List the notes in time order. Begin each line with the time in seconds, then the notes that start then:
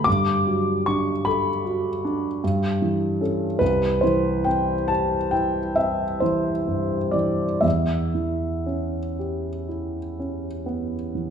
0.04 G2 D6
0.47 F#3
0.86 D4 C#6
1.25 A4 B5
1.65 F#4
2.05 D4
2.44 G2
2.82 E3
3.21 C#4 A4
3.59 C2 B4
4.01 E3 C5
4.44 C4 G5
4.88 G4 A5
5.31 E4 G5
5.76 C4 E5
6.20 E3 C5
6.68 G2
7.11 E3 D5
7.61 E2 E5
8.15 E3
8.66 C#4
9.19 G4
9.69 E4
10.20 C#4
10.66 B3
11.15 E3